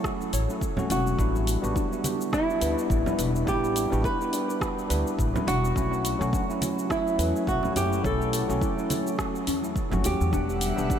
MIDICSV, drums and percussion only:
0, 0, Header, 1, 2, 480
1, 0, Start_track
1, 0, Tempo, 571429
1, 997, Time_signature, 4, 2, 24, 8
1, 9232, End_track
2, 0, Start_track
2, 0, Title_t, "Drums"
2, 36, Note_on_c, 9, 36, 114
2, 38, Note_on_c, 9, 37, 75
2, 44, Note_on_c, 9, 82, 46
2, 120, Note_off_c, 9, 36, 0
2, 122, Note_off_c, 9, 37, 0
2, 128, Note_off_c, 9, 82, 0
2, 179, Note_on_c, 9, 82, 24
2, 263, Note_off_c, 9, 82, 0
2, 277, Note_on_c, 9, 46, 83
2, 283, Note_on_c, 9, 82, 85
2, 361, Note_off_c, 9, 46, 0
2, 367, Note_off_c, 9, 82, 0
2, 419, Note_on_c, 9, 82, 33
2, 503, Note_off_c, 9, 82, 0
2, 516, Note_on_c, 9, 36, 97
2, 524, Note_on_c, 9, 82, 46
2, 600, Note_off_c, 9, 36, 0
2, 608, Note_off_c, 9, 82, 0
2, 645, Note_on_c, 9, 64, 95
2, 660, Note_on_c, 9, 82, 22
2, 729, Note_off_c, 9, 64, 0
2, 744, Note_off_c, 9, 82, 0
2, 757, Note_on_c, 9, 46, 83
2, 763, Note_on_c, 9, 82, 80
2, 841, Note_off_c, 9, 46, 0
2, 847, Note_off_c, 9, 82, 0
2, 898, Note_on_c, 9, 82, 32
2, 982, Note_off_c, 9, 82, 0
2, 996, Note_on_c, 9, 36, 99
2, 1003, Note_on_c, 9, 82, 46
2, 1080, Note_off_c, 9, 36, 0
2, 1087, Note_off_c, 9, 82, 0
2, 1140, Note_on_c, 9, 82, 22
2, 1224, Note_off_c, 9, 82, 0
2, 1237, Note_on_c, 9, 46, 84
2, 1244, Note_on_c, 9, 82, 74
2, 1321, Note_off_c, 9, 46, 0
2, 1328, Note_off_c, 9, 82, 0
2, 1380, Note_on_c, 9, 82, 31
2, 1464, Note_off_c, 9, 82, 0
2, 1476, Note_on_c, 9, 36, 107
2, 1483, Note_on_c, 9, 82, 47
2, 1560, Note_off_c, 9, 36, 0
2, 1567, Note_off_c, 9, 82, 0
2, 1619, Note_on_c, 9, 82, 23
2, 1703, Note_off_c, 9, 82, 0
2, 1714, Note_on_c, 9, 63, 77
2, 1716, Note_on_c, 9, 46, 82
2, 1722, Note_on_c, 9, 82, 74
2, 1798, Note_off_c, 9, 63, 0
2, 1800, Note_off_c, 9, 46, 0
2, 1806, Note_off_c, 9, 82, 0
2, 1858, Note_on_c, 9, 82, 36
2, 1942, Note_off_c, 9, 82, 0
2, 1956, Note_on_c, 9, 36, 103
2, 1957, Note_on_c, 9, 37, 74
2, 1964, Note_on_c, 9, 82, 44
2, 2040, Note_off_c, 9, 36, 0
2, 2041, Note_off_c, 9, 37, 0
2, 2048, Note_off_c, 9, 82, 0
2, 2100, Note_on_c, 9, 82, 23
2, 2184, Note_off_c, 9, 82, 0
2, 2196, Note_on_c, 9, 46, 91
2, 2203, Note_on_c, 9, 82, 81
2, 2280, Note_off_c, 9, 46, 0
2, 2287, Note_off_c, 9, 82, 0
2, 2339, Note_on_c, 9, 82, 36
2, 2423, Note_off_c, 9, 82, 0
2, 2436, Note_on_c, 9, 36, 94
2, 2444, Note_on_c, 9, 82, 43
2, 2520, Note_off_c, 9, 36, 0
2, 2528, Note_off_c, 9, 82, 0
2, 2572, Note_on_c, 9, 64, 92
2, 2579, Note_on_c, 9, 82, 23
2, 2656, Note_off_c, 9, 64, 0
2, 2663, Note_off_c, 9, 82, 0
2, 2677, Note_on_c, 9, 46, 82
2, 2683, Note_on_c, 9, 82, 76
2, 2761, Note_off_c, 9, 46, 0
2, 2767, Note_off_c, 9, 82, 0
2, 2820, Note_on_c, 9, 82, 31
2, 2904, Note_off_c, 9, 82, 0
2, 2916, Note_on_c, 9, 36, 98
2, 2923, Note_on_c, 9, 82, 44
2, 3000, Note_off_c, 9, 36, 0
2, 3007, Note_off_c, 9, 82, 0
2, 3061, Note_on_c, 9, 82, 21
2, 3145, Note_off_c, 9, 82, 0
2, 3157, Note_on_c, 9, 46, 84
2, 3164, Note_on_c, 9, 82, 80
2, 3241, Note_off_c, 9, 46, 0
2, 3248, Note_off_c, 9, 82, 0
2, 3299, Note_on_c, 9, 82, 30
2, 3383, Note_off_c, 9, 82, 0
2, 3395, Note_on_c, 9, 36, 96
2, 3404, Note_on_c, 9, 82, 42
2, 3479, Note_off_c, 9, 36, 0
2, 3488, Note_off_c, 9, 82, 0
2, 3539, Note_on_c, 9, 82, 21
2, 3623, Note_off_c, 9, 82, 0
2, 3637, Note_on_c, 9, 46, 88
2, 3643, Note_on_c, 9, 82, 70
2, 3721, Note_off_c, 9, 46, 0
2, 3727, Note_off_c, 9, 82, 0
2, 3780, Note_on_c, 9, 82, 34
2, 3864, Note_off_c, 9, 82, 0
2, 3875, Note_on_c, 9, 36, 102
2, 3878, Note_on_c, 9, 37, 77
2, 3884, Note_on_c, 9, 82, 43
2, 3959, Note_off_c, 9, 36, 0
2, 3962, Note_off_c, 9, 37, 0
2, 3968, Note_off_c, 9, 82, 0
2, 4021, Note_on_c, 9, 82, 21
2, 4105, Note_off_c, 9, 82, 0
2, 4118, Note_on_c, 9, 46, 87
2, 4124, Note_on_c, 9, 82, 76
2, 4202, Note_off_c, 9, 46, 0
2, 4208, Note_off_c, 9, 82, 0
2, 4260, Note_on_c, 9, 82, 33
2, 4344, Note_off_c, 9, 82, 0
2, 4356, Note_on_c, 9, 36, 96
2, 4365, Note_on_c, 9, 82, 44
2, 4440, Note_off_c, 9, 36, 0
2, 4449, Note_off_c, 9, 82, 0
2, 4499, Note_on_c, 9, 64, 101
2, 4502, Note_on_c, 9, 82, 21
2, 4583, Note_off_c, 9, 64, 0
2, 4586, Note_off_c, 9, 82, 0
2, 4602, Note_on_c, 9, 46, 86
2, 4608, Note_on_c, 9, 82, 70
2, 4686, Note_off_c, 9, 46, 0
2, 4692, Note_off_c, 9, 82, 0
2, 4744, Note_on_c, 9, 82, 31
2, 4828, Note_off_c, 9, 82, 0
2, 4837, Note_on_c, 9, 36, 91
2, 4848, Note_on_c, 9, 82, 44
2, 4921, Note_off_c, 9, 36, 0
2, 4932, Note_off_c, 9, 82, 0
2, 4984, Note_on_c, 9, 82, 20
2, 5068, Note_off_c, 9, 82, 0
2, 5080, Note_on_c, 9, 46, 95
2, 5086, Note_on_c, 9, 82, 78
2, 5164, Note_off_c, 9, 46, 0
2, 5170, Note_off_c, 9, 82, 0
2, 5223, Note_on_c, 9, 82, 30
2, 5307, Note_off_c, 9, 82, 0
2, 5317, Note_on_c, 9, 36, 99
2, 5326, Note_on_c, 9, 82, 40
2, 5401, Note_off_c, 9, 36, 0
2, 5410, Note_off_c, 9, 82, 0
2, 5462, Note_on_c, 9, 82, 21
2, 5546, Note_off_c, 9, 82, 0
2, 5558, Note_on_c, 9, 63, 83
2, 5559, Note_on_c, 9, 46, 88
2, 5565, Note_on_c, 9, 82, 71
2, 5642, Note_off_c, 9, 63, 0
2, 5643, Note_off_c, 9, 46, 0
2, 5649, Note_off_c, 9, 82, 0
2, 5702, Note_on_c, 9, 82, 34
2, 5786, Note_off_c, 9, 82, 0
2, 5797, Note_on_c, 9, 36, 96
2, 5801, Note_on_c, 9, 37, 74
2, 5807, Note_on_c, 9, 82, 39
2, 5881, Note_off_c, 9, 36, 0
2, 5885, Note_off_c, 9, 37, 0
2, 5891, Note_off_c, 9, 82, 0
2, 5941, Note_on_c, 9, 82, 22
2, 6025, Note_off_c, 9, 82, 0
2, 6040, Note_on_c, 9, 46, 98
2, 6047, Note_on_c, 9, 82, 74
2, 6124, Note_off_c, 9, 46, 0
2, 6131, Note_off_c, 9, 82, 0
2, 6183, Note_on_c, 9, 82, 31
2, 6267, Note_off_c, 9, 82, 0
2, 6277, Note_on_c, 9, 36, 101
2, 6287, Note_on_c, 9, 82, 40
2, 6361, Note_off_c, 9, 36, 0
2, 6371, Note_off_c, 9, 82, 0
2, 6408, Note_on_c, 9, 64, 81
2, 6422, Note_on_c, 9, 82, 21
2, 6492, Note_off_c, 9, 64, 0
2, 6506, Note_off_c, 9, 82, 0
2, 6519, Note_on_c, 9, 46, 97
2, 6525, Note_on_c, 9, 82, 76
2, 6603, Note_off_c, 9, 46, 0
2, 6609, Note_off_c, 9, 82, 0
2, 6660, Note_on_c, 9, 82, 31
2, 6744, Note_off_c, 9, 82, 0
2, 6757, Note_on_c, 9, 36, 94
2, 6765, Note_on_c, 9, 82, 42
2, 6841, Note_off_c, 9, 36, 0
2, 6849, Note_off_c, 9, 82, 0
2, 6901, Note_on_c, 9, 82, 20
2, 6985, Note_off_c, 9, 82, 0
2, 6998, Note_on_c, 9, 46, 94
2, 7005, Note_on_c, 9, 82, 76
2, 7082, Note_off_c, 9, 46, 0
2, 7089, Note_off_c, 9, 82, 0
2, 7141, Note_on_c, 9, 82, 31
2, 7225, Note_off_c, 9, 82, 0
2, 7236, Note_on_c, 9, 36, 98
2, 7243, Note_on_c, 9, 82, 41
2, 7320, Note_off_c, 9, 36, 0
2, 7327, Note_off_c, 9, 82, 0
2, 7380, Note_on_c, 9, 82, 21
2, 7464, Note_off_c, 9, 82, 0
2, 7477, Note_on_c, 9, 46, 88
2, 7479, Note_on_c, 9, 63, 80
2, 7483, Note_on_c, 9, 82, 74
2, 7561, Note_off_c, 9, 46, 0
2, 7563, Note_off_c, 9, 63, 0
2, 7567, Note_off_c, 9, 82, 0
2, 7619, Note_on_c, 9, 82, 36
2, 7703, Note_off_c, 9, 82, 0
2, 7716, Note_on_c, 9, 36, 104
2, 7717, Note_on_c, 9, 37, 84
2, 7723, Note_on_c, 9, 82, 43
2, 7800, Note_off_c, 9, 36, 0
2, 7801, Note_off_c, 9, 37, 0
2, 7807, Note_off_c, 9, 82, 0
2, 7859, Note_on_c, 9, 82, 22
2, 7943, Note_off_c, 9, 82, 0
2, 7956, Note_on_c, 9, 46, 101
2, 7963, Note_on_c, 9, 82, 79
2, 8040, Note_off_c, 9, 46, 0
2, 8047, Note_off_c, 9, 82, 0
2, 8097, Note_on_c, 9, 82, 32
2, 8181, Note_off_c, 9, 82, 0
2, 8196, Note_on_c, 9, 36, 97
2, 8202, Note_on_c, 9, 82, 39
2, 8280, Note_off_c, 9, 36, 0
2, 8286, Note_off_c, 9, 82, 0
2, 8328, Note_on_c, 9, 64, 91
2, 8337, Note_on_c, 9, 82, 22
2, 8412, Note_off_c, 9, 64, 0
2, 8421, Note_off_c, 9, 82, 0
2, 8435, Note_on_c, 9, 46, 89
2, 8442, Note_on_c, 9, 82, 78
2, 8519, Note_off_c, 9, 46, 0
2, 8526, Note_off_c, 9, 82, 0
2, 8577, Note_on_c, 9, 82, 32
2, 8661, Note_off_c, 9, 82, 0
2, 8676, Note_on_c, 9, 36, 96
2, 8681, Note_on_c, 9, 82, 46
2, 8760, Note_off_c, 9, 36, 0
2, 8765, Note_off_c, 9, 82, 0
2, 8816, Note_on_c, 9, 82, 21
2, 8900, Note_off_c, 9, 82, 0
2, 8913, Note_on_c, 9, 46, 99
2, 8920, Note_on_c, 9, 82, 80
2, 8997, Note_off_c, 9, 46, 0
2, 9004, Note_off_c, 9, 82, 0
2, 9057, Note_on_c, 9, 82, 32
2, 9141, Note_off_c, 9, 82, 0
2, 9156, Note_on_c, 9, 36, 104
2, 9162, Note_on_c, 9, 82, 44
2, 9232, Note_off_c, 9, 36, 0
2, 9232, Note_off_c, 9, 82, 0
2, 9232, End_track
0, 0, End_of_file